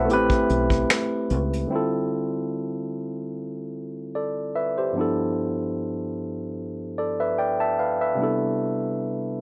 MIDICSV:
0, 0, Header, 1, 4, 480
1, 0, Start_track
1, 0, Tempo, 810811
1, 1009, Time_signature, 4, 2, 24, 8
1, 5571, End_track
2, 0, Start_track
2, 0, Title_t, "Tine electric piano"
2, 0, Program_c, 0, 4
2, 0, Control_c, 0, 64, 127
2, 0, Note_on_c, 0, 64, 60
2, 0, Note_on_c, 0, 66, 56
2, 0, Note_on_c, 0, 71, 49
2, 0, Note_on_c, 0, 72, 58
2, 0, Note_on_c, 0, 76, 55
2, 0, Note_on_c, 0, 78, 65
2, 0, Note_on_c, 0, 81, 60
2, 0, Note_on_c, 0, 83, 54
2, 30, Note_on_c, 0, 57, 70
2, 41, Note_on_c, 0, 59, 51
2, 53, Note_off_c, 0, 64, 0
2, 53, Note_on_c, 0, 64, 59
2, 57, Control_c, 0, 64, 0
2, 60, Note_off_c, 0, 66, 0
2, 60, Note_off_c, 0, 78, 0
2, 61, Note_off_c, 0, 81, 0
2, 61, Note_off_c, 0, 83, 0
2, 63, Note_off_c, 0, 72, 0
2, 66, Note_on_c, 0, 67, 71
2, 72, Note_off_c, 0, 71, 0
2, 79, Note_on_c, 0, 71, 81
2, 80, Note_on_c, 0, 60, 67
2, 87, Note_off_c, 0, 59, 0
2, 157, Control_c, 0, 64, 127
2, 171, Note_off_c, 0, 76, 0
2, 980, Note_off_c, 0, 57, 0
2, 989, Note_on_c, 0, 50, 53
2, 992, Note_off_c, 0, 64, 0
2, 998, Note_off_c, 0, 67, 0
2, 999, Note_on_c, 0, 55, 45
2, 1002, Note_off_c, 0, 60, 0
2, 1005, Note_off_c, 0, 71, 0
2, 1009, Note_on_c, 0, 60, 53
2, 1018, Control_c, 0, 64, 0
2, 1019, Note_on_c, 0, 64, 51
2, 1029, Note_on_c, 0, 65, 46
2, 1038, Note_on_c, 0, 69, 60
2, 1132, Control_c, 0, 64, 127
2, 2440, Note_off_c, 0, 69, 0
2, 2458, Note_on_c, 0, 74, 48
2, 2462, Note_on_c, 0, 69, 41
2, 2682, Note_off_c, 0, 74, 0
2, 2684, Note_off_c, 0, 69, 0
2, 2697, Note_on_c, 0, 76, 52
2, 2699, Note_on_c, 0, 71, 42
2, 2816, Note_off_c, 0, 76, 0
2, 2818, Note_off_c, 0, 71, 0
2, 2828, Note_on_c, 0, 72, 47
2, 2831, Note_on_c, 0, 67, 44
2, 2895, Note_off_c, 0, 50, 0
2, 2901, Note_off_c, 0, 55, 0
2, 2905, Note_off_c, 0, 60, 0
2, 2910, Note_off_c, 0, 64, 0
2, 2915, Note_off_c, 0, 65, 0
2, 2915, Note_on_c, 0, 43, 56
2, 2925, Note_on_c, 0, 53, 51
2, 2935, Note_on_c, 0, 59, 49
2, 2938, Control_c, 0, 64, 0
2, 2945, Note_on_c, 0, 62, 53
2, 2954, Note_on_c, 0, 64, 52
2, 2964, Note_on_c, 0, 69, 61
2, 3026, Control_c, 0, 64, 127
2, 3051, Note_off_c, 0, 72, 0
2, 3053, Note_off_c, 0, 67, 0
2, 4123, Note_off_c, 0, 69, 0
2, 4133, Note_on_c, 0, 74, 55
2, 4138, Note_on_c, 0, 69, 43
2, 4255, Note_off_c, 0, 74, 0
2, 4257, Note_off_c, 0, 69, 0
2, 4263, Note_on_c, 0, 76, 55
2, 4264, Note_on_c, 0, 71, 49
2, 4366, Note_off_c, 0, 71, 0
2, 4366, Note_off_c, 0, 76, 0
2, 4372, Note_on_c, 0, 79, 57
2, 4375, Note_on_c, 0, 74, 48
2, 4494, Note_off_c, 0, 79, 0
2, 4496, Note_off_c, 0, 74, 0
2, 4501, Note_on_c, 0, 81, 60
2, 4504, Note_on_c, 0, 76, 50
2, 4604, Note_off_c, 0, 81, 0
2, 4606, Note_off_c, 0, 76, 0
2, 4612, Note_on_c, 0, 77, 50
2, 4619, Note_on_c, 0, 71, 41
2, 4734, Note_off_c, 0, 77, 0
2, 4737, Note_off_c, 0, 71, 0
2, 4743, Note_on_c, 0, 76, 52
2, 4746, Note_on_c, 0, 71, 39
2, 4818, Note_off_c, 0, 43, 0
2, 4823, Note_off_c, 0, 53, 0
2, 4825, Note_on_c, 0, 48, 56
2, 4828, Note_off_c, 0, 59, 0
2, 4833, Note_off_c, 0, 62, 0
2, 4836, Note_on_c, 0, 55, 51
2, 4838, Note_off_c, 0, 64, 0
2, 4846, Note_on_c, 0, 59, 52
2, 4856, Control_c, 0, 64, 0
2, 4856, Note_on_c, 0, 62, 49
2, 4865, Note_on_c, 0, 64, 48
2, 4875, Note_on_c, 0, 69, 60
2, 4968, Control_c, 0, 64, 127
2, 4969, Note_off_c, 0, 76, 0
2, 4971, Note_off_c, 0, 71, 0
2, 5571, Note_off_c, 0, 48, 0
2, 5571, Note_off_c, 0, 55, 0
2, 5571, Note_off_c, 0, 59, 0
2, 5571, Note_off_c, 0, 62, 0
2, 5571, Note_off_c, 0, 64, 0
2, 5571, Note_off_c, 0, 69, 0
2, 5571, End_track
3, 0, Start_track
3, 0, Title_t, "Fingered electric bass"
3, 0, Program_c, 1, 33
3, 56, Note_on_c, 1, 33, 90
3, 255, Note_off_c, 1, 33, 0
3, 297, Note_on_c, 1, 35, 82
3, 495, Note_off_c, 1, 35, 0
3, 773, Note_on_c, 1, 37, 85
3, 973, Note_off_c, 1, 37, 0
3, 5571, End_track
4, 0, Start_track
4, 0, Title_t, "Drums"
4, 58, Note_on_c, 9, 42, 75
4, 117, Note_off_c, 9, 42, 0
4, 177, Note_on_c, 9, 36, 85
4, 236, Note_off_c, 9, 36, 0
4, 294, Note_on_c, 9, 42, 57
4, 353, Note_off_c, 9, 42, 0
4, 416, Note_on_c, 9, 36, 77
4, 420, Note_on_c, 9, 42, 40
4, 475, Note_off_c, 9, 36, 0
4, 479, Note_off_c, 9, 42, 0
4, 534, Note_on_c, 9, 26, 90
4, 535, Note_on_c, 9, 38, 103
4, 537, Note_on_c, 9, 42, 61
4, 593, Note_off_c, 9, 26, 0
4, 595, Note_off_c, 9, 38, 0
4, 596, Note_off_c, 9, 42, 0
4, 770, Note_on_c, 9, 42, 54
4, 829, Note_off_c, 9, 42, 0
4, 908, Note_on_c, 9, 42, 59
4, 967, Note_off_c, 9, 42, 0
4, 5571, End_track
0, 0, End_of_file